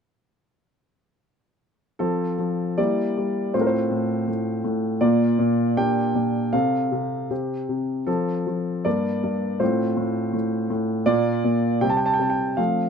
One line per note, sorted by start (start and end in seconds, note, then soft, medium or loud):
1.99 2.37 F3 medium
1.99 2.74 C4 soft
1.99 2.74 F4 soft
1.99 2.78 A4 medium
2.39 2.77 F3 soft
2.78 3.15 G3 medium
2.78 3.50 A#3 soft
2.78 3.50 E4 soft
2.78 3.54 D5 medium
3.18 3.54 G3 soft
3.54 3.89 A2 medium
3.54 4.98 C4 soft
3.54 4.98 F4 soft
3.54 3.61 C5 medium
3.61 3.68 A#4 soft
3.67 4.64 C5 medium
3.91 4.26 A2 soft
4.28 4.63 A2 soft
4.64 5.00 A2 soft
5.01 5.37 A#2 medium
5.01 5.74 A#3 soft
5.01 5.74 F4 soft
5.01 5.77 D5 medium
5.39 5.76 A#2 medium
5.77 6.14 A#2 medium
5.77 6.50 D4 soft
5.77 6.50 G4 soft
5.77 6.53 G5 medium
6.15 6.52 A#2 soft
6.53 6.91 C3 medium
6.53 7.26 C4 soft
6.53 7.27 A4 soft
6.53 7.30 F5 medium
6.92 7.29 C3 soft
7.31 7.68 C3 soft
7.31 8.04 C4 soft
7.31 8.04 G4 soft
7.69 8.06 C3 soft
8.07 8.45 F3 medium
8.07 8.81 C4 soft
8.07 8.85 A4 medium
8.47 8.85 F3 soft
8.85 9.22 G2 soft
8.85 9.57 A#3 soft
8.85 9.57 A#4 soft
8.85 9.60 D5 medium
9.24 9.60 G2 soft
9.60 9.95 A2 medium
9.60 11.03 C4 soft
9.60 11.03 F4 soft
9.60 10.70 C5 medium
9.97 10.32 A2 soft
10.33 10.69 A2 soft
10.70 11.06 A2 soft
11.06 11.43 A#2 medium
11.06 11.78 A#3 soft
11.06 11.78 F4 soft
11.06 11.82 D5 medium
11.44 11.81 A#2 medium
11.81 12.18 C3 medium
11.81 12.54 G3 soft
11.81 12.54 C4 soft
11.81 11.90 G5 medium
11.90 11.98 A5 medium
11.97 12.06 G5 medium
12.06 12.14 A5 medium
12.14 12.22 G5 medium
12.19 12.57 C3 soft
12.19 12.30 A5 medium
12.30 12.58 G5 medium
12.57 12.89 F3 soft
12.57 12.89 A3 soft
12.57 12.89 C4 soft
12.57 12.89 F5 medium